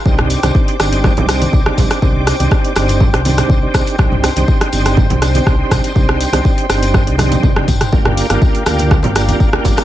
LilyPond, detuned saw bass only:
\new Staff \with { instrumentName = "Detuned saw bass" } { \clef bass \time 4/4 \key c \dorian \tempo 4 = 122 c,8 r16 c,16 r8 g,,8. c,8 r16 c,16 r16 c,16 r16 | c,8 r16 c,16 r8 g,,8. c,8 r16 c,16 r16 c,16 r16 | c,8 r16 c,16 r8 g,,8. c,8 r16 c,16 r16 c,16 r16 | c,8 r16 c,16 r8 g,,8. c,8 r16 g,,16 r16 g,,16 r16 |
g,,8 r16 g,,16 r8 d,8. g,,8 r16 g,,16 r16 g,,16 r16 | }